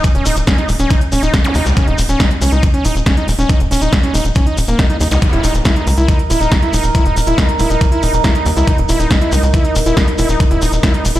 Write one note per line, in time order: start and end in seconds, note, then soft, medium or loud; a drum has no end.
0.04 kick loud
0.04 closed hi-hat medium
0.04 shekere soft
0.15 0.22 D#1 medium
0.15 0.25 C#4 loud
0.15 closed hi-hat medium
0.26 0.32 D#1 loud
0.26 0.36 D#4 medium
0.26 open hi-hat loud
0.26 shekere loud
0.36 0.43 D#1 medium
0.36 closed hi-hat medium
0.36 shekere medium
0.47 0.58 C#4 loud
0.47 kick loud
0.47 snare loud
0.47 closed hi-hat medium
0.47 shekere soft
0.58 0.68 D#4 medium
0.58 closed hi-hat medium
0.68 0.75 D#1 loud
0.68 open hi-hat loud
0.68 shekere loud
0.79 0.86 D#1 medium
0.79 0.90 C#4 loud
0.79 closed hi-hat medium
0.79 shekere medium
0.90 1.01 D#4 medium
0.90 kick loud
0.90 closed hi-hat medium
0.90 shekere soft
1.01 closed hi-hat medium
1.12 1.19 D#1 medium
1.12 1.22 C#4 loud
1.12 open hi-hat loud
1.12 shekere medium
1.23 1.29 D#1 medium
1.23 1.33 D#4 medium
1.23 closed hi-hat medium
1.23 shekere medium
1.34 kick loud
1.34 snare loud
1.34 closed hi-hat medium
1.34 shekere soft
1.44 1.55 C#4 loud
1.44 closed hi-hat medium
1.44 zap medium
1.54 1.62 D#2 medium
1.54 1.65 D#4 medium
1.54 open hi-hat loud
1.54 shekere medium
1.66 1.73 C#2 medium
1.66 closed hi-hat medium
1.66 shekere medium
1.77 1.87 C#4 loud
1.77 kick loud
1.77 closed hi-hat medium
1.77 shekere soft
1.88 1.94 D#1 medium
1.88 1.98 D#4 medium
1.88 closed hi-hat medium
1.98 2.05 D#1 medium
1.98 open hi-hat loud
1.98 shekere loud
2.09 2.16 D#1 medium
2.09 2.19 C#4 loud
2.09 closed hi-hat medium
2.09 shekere medium
2.20 2.30 D#4 medium
2.20 kick loud
2.20 snare loud
2.20 closed hi-hat medium
2.20 shekere soft
2.31 closed hi-hat soft
2.42 2.48 C#2 medium
2.42 2.52 C#4 loud
2.42 open hi-hat loud
2.42 shekere medium
2.52 2.59 C#2 medium
2.52 2.63 D#4 medium
2.52 closed hi-hat medium
2.52 shekere medium
2.63 kick loud
2.63 closed hi-hat medium
2.63 shekere soft
2.74 2.84 C#4 loud
2.74 closed hi-hat medium
2.85 2.91 D#1 medium
2.85 2.95 D#4 medium
2.85 open hi-hat loud
2.85 shekere medium
2.95 3.02 D#1 medium
2.95 closed hi-hat medium
2.95 shekere soft
3.06 3.17 C#4 loud
3.06 kick loud
3.06 snare loud
3.06 closed hi-hat medium
3.06 shekere soft
3.17 3.27 D#4 medium
3.17 closed hi-hat medium
3.28 3.34 D#1 medium
3.28 open hi-hat loud
3.28 shekere loud
3.39 3.45 D#1 medium
3.39 3.49 C#4 medium
3.39 closed hi-hat soft
3.39 shekere medium
3.49 3.60 D#4 medium
3.49 kick loud
3.49 closed hi-hat medium
3.49 shekere soft
3.60 3.67 D#1 medium
3.60 closed hi-hat medium
3.71 3.78 D#1 loud
3.71 3.81 C#4 loud
3.71 open hi-hat loud
3.71 shekere loud
3.82 3.88 D#1 medium
3.82 3.92 D#4 medium
3.82 closed hi-hat soft
3.82 shekere medium
3.93 kick loud
3.93 snare loud
3.93 closed hi-hat medium
3.93 shekere soft
4.03 4.14 C#4 loud
4.03 closed hi-hat medium
4.14 4.21 D#1 loud
4.14 4.24 D#4 medium
4.14 open hi-hat loud
4.14 shekere medium
4.25 4.32 D#1 medium
4.25 closed hi-hat medium
4.25 shekere medium
4.35 4.46 C#4 loud
4.35 kick loud
4.35 closed hi-hat medium
4.35 shekere soft
4.47 4.57 D#4 medium
4.47 closed hi-hat soft
4.57 4.64 D#1 medium
4.57 open hi-hat loud
4.57 shekere medium
4.68 4.75 D#1 medium
4.68 4.78 A#3 medium
4.68 closed hi-hat soft
4.68 shekere soft
4.79 4.86 D#4 medium
4.79 kick loud
4.79 snare loud
4.79 closed hi-hat medium
4.79 shekere soft
4.90 4.97 D#4 medium
4.90 closed hi-hat medium
5.00 5.07 D#2 loud
5.00 5.08 D#4 medium
5.00 open hi-hat loud
5.00 shekere medium
5.11 5.18 C#2 medium
5.11 5.19 D#4 medium
5.11 closed hi-hat soft
5.11 zap medium
5.11 shekere medium
5.22 11.20 D#4 medium
5.22 11.20 A#4 medium
5.22 kick loud
5.22 closed hi-hat medium
5.22 shekere soft
5.33 5.40 D#1 medium
5.33 5.43 E4 loud
5.33 closed hi-hat medium
5.44 5.50 D#1 medium
5.44 5.54 D#4 medium
5.44 open hi-hat loud
5.44 shekere medium
5.55 5.61 D#1 medium
5.55 closed hi-hat medium
5.55 shekere medium
5.65 5.76 E4 loud
5.65 kick loud
5.65 snare loud
5.65 closed hi-hat medium
5.65 shekere soft
5.76 5.86 D#4 medium
5.76 closed hi-hat soft
5.87 5.93 C#2 medium
5.87 open hi-hat loud
5.87 shekere medium
5.98 6.04 C#2 medium
5.98 6.08 E4 loud
5.98 closed hi-hat soft
5.98 shekere soft
6.08 6.19 D#4 medium
6.08 kick loud
6.08 closed hi-hat medium
6.08 shekere soft
6.19 closed hi-hat soft
6.30 6.37 D#1 loud
6.30 6.40 E4 loud
6.30 open hi-hat loud
6.30 shekere medium
6.41 6.47 D#1 medium
6.41 6.51 D#4 medium
6.41 closed hi-hat soft
6.41 shekere soft
6.52 kick loud
6.52 snare loud
6.52 closed hi-hat medium
6.62 6.73 E4 loud
6.62 closed hi-hat medium
6.73 6.80 D#1 loud
6.73 6.83 D#4 medium
6.73 open hi-hat loud
6.73 shekere medium
6.83 6.91 D#1 medium
6.83 closed hi-hat medium
6.83 shekere medium
6.95 7.05 E4 loud
6.95 kick loud
6.95 closed hi-hat medium
6.95 shekere soft
7.06 7.12 D#1 medium
7.06 7.16 D#4 medium
7.06 closed hi-hat medium
7.16 7.23 D#1 loud
7.16 open hi-hat loud
7.16 shekere medium
7.26 7.34 D#1 medium
7.26 7.37 E4 loud
7.26 closed hi-hat medium
7.26 shekere medium
7.38 7.48 D#4 medium
7.38 kick loud
7.38 snare loud
7.38 closed hi-hat medium
7.38 shekere soft
7.49 closed hi-hat medium
7.59 7.66 D#1 medium
7.59 7.70 E4 loud
7.59 open hi-hat loud
7.59 shekere medium
7.70 7.77 D#1 medium
7.70 7.81 D#4 medium
7.70 closed hi-hat medium
7.70 shekere soft
7.81 kick loud
7.81 closed hi-hat medium
7.81 shekere soft
7.92 8.02 E4 loud
7.92 closed hi-hat medium
8.03 8.09 D#1 medium
8.03 8.13 D#4 medium
8.03 open hi-hat loud
8.03 shekere medium
8.13 8.20 D#1 medium
8.13 closed hi-hat medium
8.13 shekere soft
8.24 8.35 E4 loud
8.24 kick loud
8.24 snare loud
8.24 closed hi-hat medium
8.24 shekere soft
8.35 8.45 D#4 medium
8.35 closed hi-hat medium
8.46 8.52 D#2 medium
8.46 open hi-hat loud
8.46 shekere medium
8.57 8.63 C#2 medium
8.57 8.67 E4 loud
8.57 closed hi-hat soft
8.57 shekere medium
8.67 8.78 D#4 medium
8.67 kick loud
8.67 closed hi-hat medium
8.67 shekere soft
8.78 8.85 D#1 medium
8.78 closed hi-hat medium
8.89 8.96 D#1 loud
8.89 8.99 E4 loud
8.89 open hi-hat loud
8.89 shekere medium
9.00 9.06 D#1 medium
9.00 9.10 D#4 medium
9.00 closed hi-hat medium
9.00 shekere medium
9.11 kick loud
9.11 snare loud
9.11 closed hi-hat medium
9.11 shekere soft
9.21 9.32 E4 loud
9.21 closed hi-hat medium
9.32 9.39 C#2 medium
9.32 9.42 D#4 medium
9.32 open hi-hat loud
9.32 shekere medium
9.43 9.50 C#2 medium
9.43 closed hi-hat medium
9.43 shekere soft
9.54 9.64 E4 loud
9.54 kick loud
9.54 closed hi-hat medium
9.54 shekere soft
9.65 9.75 D#4 medium
9.65 closed hi-hat medium
9.75 9.82 D#1 medium
9.75 open hi-hat loud
9.75 shekere loud
9.86 9.93 D#1 medium
9.86 9.96 E4 loud
9.86 closed hi-hat medium
9.86 shekere soft
9.97 10.07 D#4 medium
9.97 kick loud
9.97 snare loud
9.97 closed hi-hat medium
9.97 shekere soft
10.08 closed hi-hat medium
10.18 10.25 D#1 loud
10.18 10.29 E4 loud
10.18 open hi-hat loud
10.18 shekere medium
10.29 10.36 D#1 medium
10.29 10.40 D#4 medium
10.29 closed hi-hat medium
10.29 shekere soft
10.40 kick loud
10.40 closed hi-hat medium
10.40 shekere soft
10.51 10.58 D#1 medium
10.51 10.61 E4 loud
10.51 closed hi-hat medium
10.61 10.68 D#1 medium
10.61 10.72 D#4 medium
10.61 open hi-hat loud
10.61 shekere medium
10.72 10.79 D#1 medium
10.72 closed hi-hat medium
10.72 shekere medium
10.83 10.94 E4 medium
10.83 kick loud
10.83 snare loud
10.83 closed hi-hat medium
10.83 shekere soft
10.94 11.04 D#4 medium
10.94 closed hi-hat medium
11.05 11.11 D#1 medium
11.05 open hi-hat loud
11.05 shekere medium
11.15 11.20 D#1 medium
11.15 11.20 E4 loud
11.15 closed hi-hat medium
11.15 shekere soft